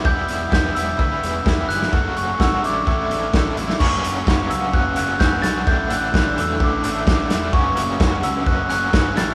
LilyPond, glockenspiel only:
\new Staff \with { instrumentName = "Glockenspiel" } { \time 4/4 \key fis \phrygian \tempo 4 = 128 g'''4 g'''8 e'''8 e'''4. fis'''8~ | fis'''8 cis'''8 e'''8 d'''2 r8 | cis'''4. e'''8 fis'''8 fis'''8 g'''8 a'''8 | g'''8 fis'''8 fis'''8 e'''8 d'''4 r4 |
cis'''4. e'''8 fis'''8 fis'''4 a'''8 | }